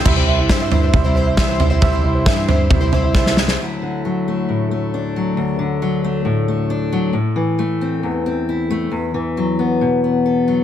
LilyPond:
<<
  \new Staff \with { instrumentName = "Upright piano" } { \time 4/4 \key d \mixolydian \tempo 4 = 135 e'16 c''16 e''16 e'16 c''16 e''16 e'16 c''16 e''16 e'16 c''16 e''16 e'16 c''16 e''16 e'16 | c''8 e'16 c''16 e''8 c''8 e'16 c''16 e''16 e'16 c''16 e''16 e'16 c''16 | r1 | r1 |
r1 | r1 | }
  \new Staff \with { instrumentName = "Grand piano" } { \time 4/4 \key d \mixolydian <g e' c'' e''>8. r16 <g e' c'' e''>8. r16 <g e' c'' e''>8. r16 <g e' c'' e''>8. r16 | <g e' c'' e''>8. r16 <g e' c'' e''>8. r16 <g e' c'' e''>8. r16 <g e' c'' e''>8. r16 | r1 | r1 |
r1 | r1 | }
  \new Staff \with { instrumentName = "Grand piano" } { \clef bass \time 4/4 \key d \mixolydian <c, c>1 | <c, c>1 | r1 | r1 |
r1 | r1 | }
  \new Staff \with { instrumentName = "Twelve-string acoustic guitar" } { \time 4/4 \key d \mixolydian <c e g c' e' c''>16 <g c' e' c''>8. <c e g c' e' c''>16 <g c' e' c''>16 <g c' e' c''>16 <g c' e' c''>8 <g c' e' c''>16 <g c' e' c''>8 <c e g c' e' c''>8 <g c' e' c''>16 <g c' e' c''>16 | <c e g c' e' c''>16 <g c' e' c''>8. <c e g c' e' c''>8 <g c' e' c''>8. <g c' e' c''>16 <g c' e' c''>8 <c e g c' e' c''>8 <g c' e' c''>16 <g c' e' c''>16 | r1 | r1 |
r1 | r1 | }
  \new Staff \with { instrumentName = "Steel-string acoustic guitar" } { \clef bass \time 4/4 \key d \mixolydian << { r1 | r1 | <d fis a e'>4 fis8 a4 a8 d'8 fis8~ | fis4 fis8 a4 a8 d'8 fis8 |
r4 a8 c'4 c'8 e'8 a8 | r4 fis8 b4 b8 a'8 fis8 | } \\ { r1 | r1 | d,8 d4. a,2 | d,8 d4. a,2 |
a,8 e4. e,2 | e,8 e4. b,2 | } >> }
  \new Staff \with { instrumentName = "Fingered electric bass" } { \clef bass \time 4/4 \key d \mixolydian c,8 c,8 g,4 c,2 | c,8 c,8 g,4 c,2 | r1 | r1 |
r1 | r1 | }
  \new DrumStaff \with { instrumentName = "Drums" } \drummode { \time 4/4 <cymc bd tomfh>4 <bd sn>8 tomfh8 <bd tomfh>4 <bd sn>8 tomfh8 | <bd tomfh>4 <bd sn>8 tomfh8 <bd tomfh>8 tomfh8 <bd sn>16 sn16 sn16 sn16 | r4 r4 r4 r4 | r4 r4 r4 r4 |
r4 r4 r4 r4 | r4 r4 r4 r4 | }
>>